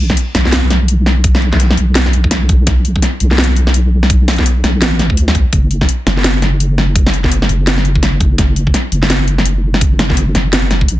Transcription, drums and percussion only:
0.10 kick medium
0.10 snare medium
0.17 closed hi-hat medium
0.35 snare medium
0.35 closed hi-hat soft
0.45 snare soft
0.52 snare loud
0.52 closed hi-hat medium
0.70 snare medium
0.70 closed hi-hat soft
0.88 closed hi-hat medium
1.06 snare medium
1.24 kick loud
1.24 closed hi-hat medium
1.35 snare medium
1.42 closed hi-hat soft
1.53 kick medium
1.53 snare soft
1.60 closed hi-hat medium
1.70 snare medium
1.77 closed hi-hat soft
1.95 snare loud
1.95 closed hi-hat medium
2.06 snare medium
2.13 closed hi-hat soft
2.24 kick medium
2.31 snare medium
2.31 closed hi-hat medium
2.49 kick loud
2.49 closed hi-hat soft
2.67 kick loud
2.67 snare soft
2.67 closed hi-hat medium
2.85 closed hi-hat soft
2.96 kick medium
3.02 snare medium
3.02 closed hi-hat medium
3.20 closed hi-hat soft
3.31 snare soft
3.38 snare loud
3.44 closed hi-hat medium
3.56 closed hi-hat soft
3.67 snare medium
3.74 closed hi-hat medium
4.03 snare medium
4.10 kick loud
4.10 closed hi-hat medium
4.28 snare medium
4.28 closed hi-hat soft
4.31 closed hi-hat soft
4.33 closed hi-hat soft
4.36 kick medium
4.36 snare soft
4.36 closed hi-hat soft
4.46 closed hi-hat medium
4.64 snare medium
4.64 closed hi-hat soft
4.82 snare loud
4.82 closed hi-hat medium
4.99 snare medium
4.99 closed hi-hat soft
5.10 kick medium
5.17 closed hi-hat medium
5.28 snare medium
5.35 kick loud
5.35 closed hi-hat soft
5.53 kick loud
5.53 closed hi-hat medium
5.71 closed hi-hat soft
5.81 kick medium
5.81 snare soft
5.89 closed hi-hat medium
6.07 snare medium
6.07 closed hi-hat soft
6.17 snare soft
6.24 snare loud
6.24 closed hi-hat medium
6.42 snare medium
6.42 closed hi-hat soft
6.60 closed hi-hat medium
6.78 snare soft
6.96 kick loud
6.96 closed hi-hat medium
7.07 snare medium
7.14 closed hi-hat soft
7.24 kick medium
7.24 snare soft
7.31 closed hi-hat medium
7.42 snare medium
7.49 closed hi-hat soft
7.67 snare loud
7.67 closed hi-hat medium
7.78 snare medium
7.85 closed hi-hat soft
7.95 kick medium
8.03 snare medium
8.03 closed hi-hat medium
8.20 kick loud
8.20 closed hi-hat soft
8.38 kick loud
8.38 snare medium
8.38 closed hi-hat medium
8.56 closed hi-hat soft
8.67 kick medium
8.74 snare medium
8.74 closed hi-hat medium
8.92 closed hi-hat soft
9.03 snare soft
9.03 snare medium
9.10 snare loud
9.10 closed hi-hat medium
9.28 closed hi-hat soft
9.38 snare medium
9.46 closed hi-hat medium
9.74 snare medium
9.81 kick loud
9.81 closed hi-hat medium
9.99 snare medium
9.99 closed hi-hat soft
10.10 kick medium
10.10 snare soft
10.17 closed hi-hat medium
10.35 snare medium
10.35 closed hi-hat soft
10.53 snare loud
10.53 closed hi-hat medium
10.71 snare medium
10.71 closed hi-hat soft
10.81 kick medium
10.88 closed hi-hat medium

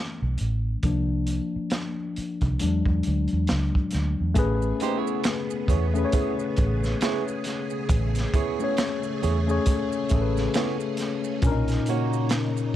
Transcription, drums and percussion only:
0.38 closed hi-hat medium
0.83 kick medium
0.83 closed hi-hat medium
1.27 closed hi-hat medium
1.70 snare loud
1.70 closed hi-hat medium
2.16 closed hi-hat medium
2.41 kick medium
2.41 closed hi-hat soft
2.59 closed hi-hat medium
2.85 kick medium
3.03 closed hi-hat medium
3.28 closed hi-hat soft
3.47 snare loud
3.47 closed hi-hat medium
3.75 kick medium
3.91 snare soft
3.91 closed hi-hat medium
4.35 kick loud
4.35 closed hi-hat medium
4.35 maracas medium
4.62 maracas soft
4.80 closed hi-hat medium
4.80 maracas soft
5.07 maracas soft
5.24 finger snap medium
5.24 snare loud
5.24 closed hi-hat medium
5.24 maracas medium
5.50 maracas soft
5.68 kick loud
5.68 closed hi-hat medium
5.68 maracas soft
5.95 maracas soft
6.12 kick loud
6.12 closed hi-hat medium
6.12 maracas medium
6.39 maracas soft
6.57 kick loud
6.57 closed hi-hat medium
6.57 maracas soft
6.84 snare soft
6.84 maracas medium
7.01 finger snap medium
7.01 snare loud
7.01 closed hi-hat medium
7.01 maracas medium
7.28 maracas soft
7.44 snare soft
7.44 closed hi-hat medium
7.44 maracas soft
7.70 maracas soft
7.89 kick loud
7.89 closed hi-hat medium
7.89 maracas medium
8.15 snare soft
8.15 closed hi-hat medium
8.15 maracas soft
8.34 kick loud
8.34 closed hi-hat medium
8.34 maracas soft
8.60 maracas medium
8.77 finger snap medium
8.77 snare loud
8.77 closed hi-hat medium
8.77 maracas medium
9.03 maracas soft
9.23 closed hi-hat medium
9.23 maracas soft
9.49 maracas soft
9.66 kick loud
9.66 closed hi-hat loud
9.66 maracas medium
9.92 maracas soft
10.09 kick medium
10.09 closed hi-hat medium
10.09 maracas soft
10.37 snare soft
10.37 maracas soft
10.54 finger snap medium
10.54 snare loud
10.54 closed hi-hat medium
10.54 maracas medium
10.80 maracas soft
10.97 snare soft
10.97 closed hi-hat medium
10.97 maracas soft
11.24 maracas soft
11.42 kick loud
11.42 closed hi-hat medium
11.42 maracas medium
11.68 snare soft
11.68 closed hi-hat medium
11.68 maracas soft
11.86 closed hi-hat medium
11.86 maracas soft
12.13 maracas soft
12.29 finger snap medium
12.29 snare loud
12.29 closed hi-hat medium
12.29 maracas medium
12.57 maracas soft

